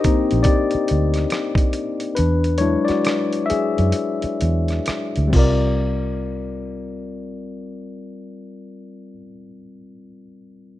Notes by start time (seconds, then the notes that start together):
Already playing: D4 D#4 G4 A#4 C5 D#5 G5
0.04 A#3 C4 D#4, muted fingered electric bass stroke, kick, closed hi-hat
0.31 A#1, closed hi-hat
0.43 G4 D5, kick, closed hi-hat
0.71 closed hi-hat
0.75 muted fingered electric bass stroke
0.88 D2, closed hi-hat
1.14 cross-stick, closed hi-hat
1.30 cross-stick, closed hi-hat
1.55 kick, closed hi-hat
1.73 closed hi-hat
2.00 closed hi-hat
2.15 E2 D4 B4, closed hi-hat
2.44 closed hi-hat
2.58 F#3 G#3 D4 E4 C#5, closed hi-hat
2.85 F#4 D5, closed hi-hat
2.89 muted fingered electric bass stroke, cross-stick
3.05 cross-stick, closed hi-hat
3.33 closed hi-hat
3.46 E5
3.50 G#4, muted fingered electric bass stroke, closed hi-hat
3.78 F#2, closed hi-hat
3.92 closed hi-hat
4.22 muted fingered electric bass stroke, closed hi-hat
4.41 E2, closed hi-hat
4.68 cross-stick, closed hi-hat
4.86 muted fingered electric bass stroke, cross-stick, closed hi-hat
5.16 D2, closed hi-hat
5.27 G3 C4
5.33 C2 F4 A#4, kick, crash
5.39 D5